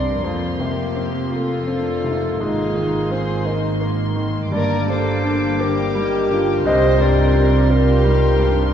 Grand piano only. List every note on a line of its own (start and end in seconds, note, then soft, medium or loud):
0.00 0.20 C2 soft
0.00 0.26 G2 soft
0.00 0.26 C4 soft
0.00 0.26 G4 soft
0.24 2.37 F2 soft
0.59 1.17 C3 soft
0.96 1.53 C4 soft
1.30 1.89 F4 soft
1.67 2.26 C4 soft
2.04 2.40 C3 soft
2.40 4.50 G#2 soft
2.74 3.33 D#3 soft
3.11 3.68 C4 soft
3.45 4.03 D#4 soft
3.81 4.39 A#3 soft
4.16 4.53 D#3 soft
4.52 6.61 G2 medium
4.87 5.45 D3 soft
5.23 5.81 D4 soft
5.59 6.16 G4 soft
5.95 6.52 G3 soft
6.30 6.66 D3 soft
6.65 8.72 C2 medium
6.99 7.56 G2 soft
7.34 7.91 C4 soft
7.70 8.26 F4 soft
8.04 8.61 G3 soft
8.39 8.73 G2 soft